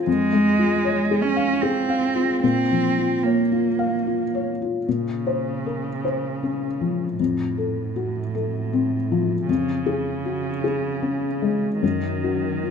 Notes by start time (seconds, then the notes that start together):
0.06 F2 G#3
0.33 G#3
0.58 F4
0.85 C#5
1.11 G#4
1.22 C#4
1.36 F5
1.61 C4 G#4
1.89 F5
2.15 F4
2.42 A#2 C4
2.71 F3
2.98 F4
3.23 A#3 C#5
3.52 F4
3.79 F5
4.07 F4
4.35 C#5
4.62 F4
4.86 A#2 C#3
5.27 C5
5.66 A#4
6.05 C5
6.43 C#4
6.81 F3
7.17 F2 A2
7.58 A4
7.96 F#4
8.35 A4
8.73 C4
9.12 F3
9.48 F2 C#3
9.86 G#4
10.25 F#4
10.64 G#4
11.02 C#4
11.42 G#3
11.82 F#2 D#3
12.24 F#4
12.64 F4